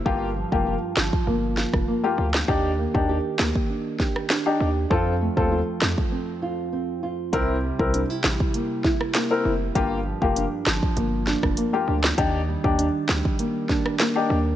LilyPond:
<<
  \new Staff \with { instrumentName = "Grand piano" } { \time 4/4 \key g \minor \tempo 4 = 99 <bes f' g'>16 r8 <bes f' g'>16 r2 r16 <bes f' g'>16 r8 | <d' ees' g'>16 r8 <d' ees' g'>16 r2 r16 <d' ees' g'>16 r8 | <c' f' a'>16 r8 <c' f' a'>16 r2. | <c' e' bes'>16 r8 <c' e' bes'>16 r2 r16 <c' e' bes'>16 r8 |
<bes f' g'>16 r8 <bes f' g'>16 r2 r16 <bes f' g'>16 r8 | <d' ees' g'>16 r8 <d' ees' g'>16 r2 r16 <d' ees' g'>16 r8 | }
  \new Staff \with { instrumentName = "Nylon-string guitar" } { \time 4/4 \key g \minor <g, f'>8 f8 f'8 f8 bes8 f'8 bes8 f'8 | <ees g'>8 bes8 g'8 bes8 d'8 g'8 d'8 g'8 | <f, f'>8 a8 f'8 a8 c'8 f'8 c'8 f'8 | <c e'>8 g8 d'16 e'16 g8 bes8 e'8 bes8 e'8 |
<g, d'>8 f8 d'8 f8 bes8 d'8 bes8 d'8 | <ees d'>8 g8 d'8 g8 bes8 d'8 bes8 d'8 | }
  \new Staff \with { instrumentName = "808-style bass" } { \clef bass \time 4/4 \key g \minor g,,8. f,,8 r16 g,,16 r16 g,,8. f,,16 r8 d,8 | ees,8. ees,8 r16 d,16 r4. r16 ees,8 | f,8. ees,8 r16 f,16 r2 r16 | c,8. c,8 r16 a,,16 r4. r16 f,,8 |
g,,8. f,,8 r16 g,,16 r16 g,,8. f,,16 r8 d,8 | ees,8. ees,8 r16 d,16 r4. r16 ees,8 | }
  \new DrumStaff \with { instrumentName = "Drums" } \drummode { \time 4/4 bd8. bd16 r8 <hc sn>16 bd16 r8 sn16 <bd ss>16 r8. <hc sn>16 | bd8. bd16 r8 <hc sn>16 bd16 r8 <bd sn>16 ss16 <hc sn>4 | bd8. bd16 r8 <hc sn>16 bd16 r4 r4 | <hh bd>8. bd16 hh8 <hc sn>16 bd16 hh8 <bd sn>16 ss16 <hc hh sn>4 |
<hh bd>8. bd16 hh8 <hc sn>16 bd16 hh8 sn16 <bd ss>16 hh8. <hc sn>16 | <hh bd>8. bd16 hh8 <hc sn>16 bd16 hh8 <bd sn>16 ss16 <hc hh sn>4 | }
>>